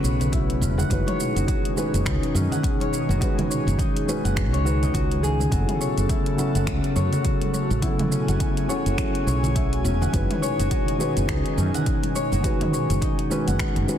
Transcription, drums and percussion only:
0.03 muted conga, shaker
0.20 closed hi-hat, low conga, shaker
0.32 kick, closed hi-hat, shaker
0.50 closed hi-hat
0.62 shaker
0.78 muted conga, high conga, low conga, shaker
0.90 kick, closed hi-hat, shaker
1.07 closed hi-hat, mid tom, muted conga
1.20 shaker
1.37 closed hi-hat, shaker
1.48 kick, closed hi-hat, shaker
1.65 closed hi-hat
1.76 muted conga, shaker
1.94 closed hi-hat, shaker
2.06 finger snap, kick, closed hi-hat, high conga, shaker
2.23 closed hi-hat
2.35 muted conga, low conga, shaker
2.52 closed hi-hat, low conga, shaker
2.63 kick, closed hi-hat, shaker
2.80 closed hi-hat, high conga
2.93 muted conga, shaker
3.09 muted conga, high conga, shaker
3.21 kick, closed hi-hat, shaker
3.38 closed hi-hat, mid tom, muted conga, low conga
3.51 shaker
3.66 closed hi-hat, high conga, shaker
3.79 kick, closed hi-hat, shaker
3.97 closed hi-hat
4.08 muted conga, shaker
4.25 closed hi-hat, shaker
4.36 finger snap, kick, closed hi-hat, shaker
4.54 closed hi-hat
4.65 muted conga, shaker
4.83 closed hi-hat, low conga, shaker
4.94 kick, closed hi-hat, shaker
5.11 closed hi-hat
5.24 shaker
5.39 muted conga, high conga, low conga, shaker
5.52 kick, closed hi-hat, shaker
5.68 closed hi-hat, mid tom, muted conga
5.81 shaker
5.98 closed hi-hat, shaker
6.09 kick, closed hi-hat, shaker
6.26 closed hi-hat
6.38 muted conga, shaker
6.55 closed hi-hat, shaker
6.67 finger snap, kick, closed hi-hat, high conga, shaker
6.84 closed hi-hat
6.96 muted conga, low conga, shaker
7.13 closed hi-hat, low conga, shaker
7.25 kick, closed hi-hat, shaker
7.42 closed hi-hat, high conga
7.54 muted conga, shaker
7.71 muted conga, high conga, shaker
7.82 kick, closed hi-hat, shaker
7.99 closed hi-hat, mid tom, muted conga, low conga
8.12 shaker
8.28 closed hi-hat, high conga, shaker
8.40 kick, closed hi-hat, shaker
8.57 closed hi-hat
8.69 muted conga, shaker
8.86 closed hi-hat, shaker
8.98 finger snap, kick, closed hi-hat, shaker
9.15 closed hi-hat
9.27 muted conga, shaker
9.43 closed hi-hat, low conga, shaker
9.56 kick, closed hi-hat, shaker
9.73 closed hi-hat
9.85 shaker
10.01 muted conga, high conga, low conga, shaker
10.13 kick, closed hi-hat, shaker
10.31 closed hi-hat, mid tom, muted conga
10.43 shaker
10.60 closed hi-hat, shaker
10.71 kick, closed hi-hat, shaker
10.88 closed hi-hat
10.99 muted conga, shaker
11.17 closed hi-hat, shaker
11.28 finger snap, kick, closed hi-hat, high conga, shaker
11.46 closed hi-hat
11.57 muted conga, low conga, shaker
11.74 closed hi-hat, low conga, shaker
11.86 kick, closed hi-hat, shaker
12.03 closed hi-hat, high conga
12.16 muted conga, shaker
12.32 muted conga, high conga, shaker
12.44 kick, closed hi-hat, shaker
12.61 closed hi-hat, mid tom, muted conga, low conga
12.74 shaker
12.90 closed hi-hat, high conga, shaker
13.02 kick, closed hi-hat, shaker
13.19 closed hi-hat
13.31 muted conga, shaker
13.48 closed hi-hat, mid tom, shaker
13.59 finger snap, kick, closed hi-hat, shaker
13.76 closed hi-hat
13.88 muted conga, high conga, shaker

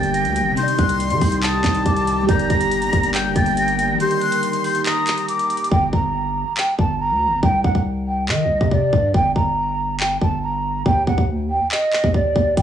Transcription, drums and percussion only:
0.03 closed hi-hat
0.14 closed hi-hat
0.25 closed hi-hat
0.36 closed hi-hat
0.57 closed hi-hat
0.68 closed hi-hat
0.78 kick, closed hi-hat
0.89 closed hi-hat
1.00 closed hi-hat
1.10 closed hi-hat
1.21 kick, open hi-hat
1.32 closed hi-hat
1.43 clap, closed hi-hat
1.64 kick, clap, closed hi-hat
1.75 closed hi-hat
1.86 kick, closed hi-hat
1.96 closed hi-hat
2.07 closed hi-hat
2.29 kick, closed hi-hat
2.39 closed hi-hat
2.50 kick, closed hi-hat
2.61 closed hi-hat
2.71 closed hi-hat
2.82 closed hi-hat
2.93 kick, closed hi-hat
3.03 closed hi-hat
3.14 clap, closed hi-hat
3.36 kick, closed hi-hat
3.46 closed hi-hat
3.57 closed hi-hat
3.68 closed hi-hat
3.79 closed hi-hat
4.00 closed hi-hat
4.11 closed hi-hat
4.21 closed hi-hat
4.32 closed hi-hat
4.43 closed hi-hat
4.53 closed hi-hat
4.64 open hi-hat
4.75 closed hi-hat
4.86 clap, closed hi-hat
5.07 clap, closed hi-hat
5.18 closed hi-hat
5.28 closed hi-hat
5.39 closed hi-hat
5.50 closed hi-hat
5.57 closed hi-hat
5.64 closed hi-hat
5.71 kick
5.93 kick
6.57 clap
6.79 kick
7.43 kick
7.64 kick
7.75 kick
8.29 clap
8.61 kick
8.71 kick
8.93 kick
9.14 kick
9.36 kick
10.00 clap
10.21 kick
10.86 kick
11.07 kick
11.18 kick
11.71 clap
11.93 clap
12.04 kick
12.14 kick
12.36 kick
12.57 kick, closed hi-hat

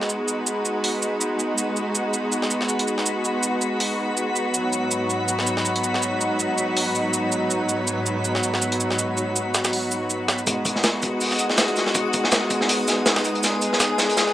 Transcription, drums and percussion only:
0.01 snare
0.10 shaker
0.28 shaker
0.47 shaker
0.65 shaker
0.84 open hi-hat
1.03 shaker
1.21 shaker
1.39 shaker
1.58 shaker
1.77 shaker
1.95 shaker
2.14 shaker
2.32 shaker
2.42 snare
2.51 shaker
2.61 snare
2.69 shaker
2.79 closed hi-hat
2.88 shaker
2.98 snare
3.06 shaker
3.25 shaker
3.43 shaker
3.62 shaker
3.80 open hi-hat
4.17 shaker
4.36 shaker
4.54 shaker
4.73 shaker
4.91 shaker
5.10 shaker
5.28 shaker
5.39 snare
5.47 shaker
5.57 snare
5.65 shaker
5.76 closed hi-hat
5.84 shaker
5.94 snare
6.03 shaker
6.21 shaker
6.40 shaker
6.58 shaker
6.77 open hi-hat
6.95 shaker
7.14 shaker
7.32 shaker
7.51 shaker
7.69 shaker
7.88 shaker
8.06 shaker
8.25 shaker
8.35 snare
8.43 shaker
8.54 snare
8.62 shaker
8.72 closed hi-hat
8.80 shaker
8.90 snare
8.99 shaker
9.17 shaker
9.36 shaker
9.54 snare, shaker
9.65 snare, shaker
9.73 open hi-hat
9.91 shaker
10.10 shaker
10.28 snare
10.39 shaker
10.47 kick, closed hi-hat, shaker
10.65 kick, closed hi-hat, shaker
10.76 snare
10.84 snare, closed hi-hat, shaker
11.02 kick, closed hi-hat, shaker
11.21 open hi-hat, shaker
11.31 snare
11.39 closed hi-hat, shaker
11.49 snare
11.58 snare, closed hi-hat, shaker
11.68 closed hi-hat
11.76 snare, closed hi-hat, shaker
11.86 snare
11.94 kick, closed hi-hat, shaker
12.13 kick, closed hi-hat, shaker
12.24 snare
12.31 snare, closed hi-hat, shaker
12.50 kick, closed hi-hat, shaker
12.61 snare
12.69 closed hi-hat, open hi-hat
12.88 snare, closed hi-hat, shaker
13.06 snare, closed hi-hat, shaker
13.16 snare
13.25 closed hi-hat, shaker
13.35 closed hi-hat
13.43 snare, closed hi-hat, shaker
13.62 closed hi-hat, shaker
13.73 snare
13.80 snare, closed hi-hat, shaker
13.98 snare, closed hi-hat, shaker
14.09 closed hi-hat
14.17 snare, closed hi-hat, shaker
14.27 snare

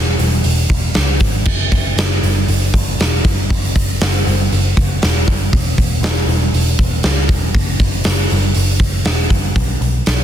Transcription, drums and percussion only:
0.19 open hi-hat
0.44 open hi-hat
0.69 kick, open hi-hat
0.94 snare, open hi-hat
1.20 kick, open hi-hat
1.45 kick, crash
1.72 kick, open hi-hat
1.98 snare, open hi-hat
2.23 open hi-hat
2.48 open hi-hat
2.74 kick, open hi-hat
3.00 snare, open hi-hat
3.25 kick, open hi-hat
3.50 kick, open hi-hat
3.76 kick, open hi-hat
4.01 snare, open hi-hat
4.27 open hi-hat
4.52 open hi-hat
4.77 kick, open hi-hat
5.02 snare, open hi-hat
5.28 kick, open hi-hat
5.53 kick, open hi-hat
5.78 kick, open hi-hat
6.03 snare, open hi-hat
6.29 open hi-hat
6.54 open hi-hat
6.79 kick, open hi-hat
7.03 snare, open hi-hat
7.29 kick, open hi-hat
7.55 kick, open hi-hat
7.80 kick, open hi-hat
8.04 snare, open hi-hat
8.30 open hi-hat
8.54 open hi-hat
8.79 kick, open hi-hat
9.05 snare, open hi-hat
9.30 kick, open hi-hat
9.56 kick, open hi-hat
9.82 open hi-hat
10.06 snare, open hi-hat

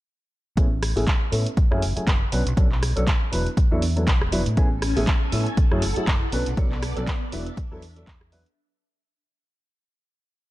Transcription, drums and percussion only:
0.57 kick, closed hi-hat
0.83 cross-stick, open hi-hat
0.97 open hi-hat
1.07 kick, clap, closed hi-hat
1.32 open hi-hat
1.46 closed hi-hat
1.57 kick, closed hi-hat
1.72 cross-stick
1.82 open hi-hat
1.97 closed hi-hat
2.07 kick, clap, closed hi-hat
2.32 open hi-hat
2.47 closed hi-hat
2.57 kick, closed hi-hat
2.72 clap
2.83 cross-stick, open hi-hat
2.97 closed hi-hat
3.07 kick, clap, closed hi-hat
3.33 open hi-hat
3.46 closed hi-hat
3.57 kick, closed hi-hat
3.82 open hi-hat
3.97 closed hi-hat
4.07 kick, clap, closed hi-hat
4.21 cross-stick
4.32 open hi-hat
4.46 closed hi-hat
4.57 kick, closed hi-hat
4.82 cross-stick, open hi-hat
4.97 open hi-hat
5.07 kick, clap, closed hi-hat
5.32 open hi-hat
5.46 closed hi-hat
5.57 kick, closed hi-hat
5.72 cross-stick
5.82 open hi-hat
5.96 closed hi-hat
6.07 kick, clap, closed hi-hat
6.32 open hi-hat
6.46 closed hi-hat
6.57 kick, closed hi-hat
6.72 clap
6.83 cross-stick, open hi-hat
6.97 closed hi-hat
7.07 kick, clap, closed hi-hat
7.32 open hi-hat
7.47 closed hi-hat
7.57 kick, closed hi-hat
7.82 open hi-hat
7.96 closed hi-hat
8.07 kick, clap, closed hi-hat
8.21 cross-stick
8.32 open hi-hat
8.46 closed hi-hat

